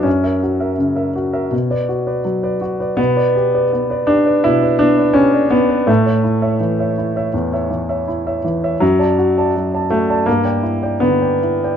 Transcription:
<<
  \new Staff \with { instrumentName = "Grand piano" } { \time 4/4 \key b \dorian \tempo 4 = 82 fis,16 <ais' e''>16 fis'16 <ais' e''>16 cis16 <ais' e''>16 fis'16 <ais' e''>16 b,16 <b' d''>16 fis'16 <b' d''>16 fis16 <b' d''>16 fis'16 <b' d''>16 | \key a \mixolydian b,16 <b' d''>16 g'16 <b' d''>16 b16 <b' d''>16 g'16 <b' d''>16 b,16 <b' d''>16 b16 <b' d''>16 g'16 <b' d''>16 r16 <b' d''>16 | a,16 <cis'' e''>16 e'16 <cis'' e''>16 e16 <cis'' e''>16 e'16 <cis'' e''>16 e,16 <cis'' e''>16 e16 <cis'' e''>16 e'16 <cis'' e''>16 e16 <cis'' e''>16 | fis,16 <d'' a''>16 fis'16 <d'' a''>16 fis16 <d'' a''>16 fis'16 <d'' a''>16 g,16 <d'' g''>16 e'16 <d'' g''>16 d16 <d'' g''>16 e'16 <d'' g''>16 | }
  \new Staff \with { instrumentName = "Grand piano" } { \time 4/4 \key b \dorian cis'2.~ cis'8 r8 | \key a \mixolydian b4. d'8 e'8 d'8 cis'8 b8 | a2.~ a8 r8 | fis4. a8 bes4 b4 | }
>>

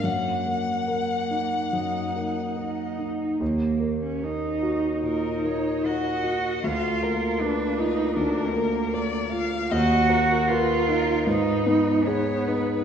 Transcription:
<<
  \new Staff \with { instrumentName = "Violin" } { \time 4/4 \key ees \minor \tempo 4 = 75 ges''2.~ ges''8 r8 | r2 bes'8 des''8 ees''4 | f''8 bes'8 ces''4 bes'4 d''8 f''8 | ees''8 bes'8 ces''8 bes'8 ces''4 des''8 ces''8 | }
  \new Staff \with { instrumentName = "Cello" } { \time 4/4 \key ees \minor bes4 bes4 ees'4 ees'4 | bes8. des'16 ees'4 ees'4 ges'4 | f'4 d'8 ees'8 d'8 bes4 r8 | ges'4 f'4 ees'4 ces'4 | }
  \new Staff \with { instrumentName = "Grand piano" } { \time 4/4 \key ees \minor ges,8 bes8 bes'8 ees'8 ges,8 bes8 bes'8 ees'8 | ees,8 bes8 bes'8 ges'8 bes,8 bes8 bes'8 ges'8 | d,8 bes8 bes'8 f'8 d,8 bes8 bes'8 f'8 | ees,8 bes8 bes'8 ees'8 aes,8 ces'8 aes'8 ees'8 | }
>>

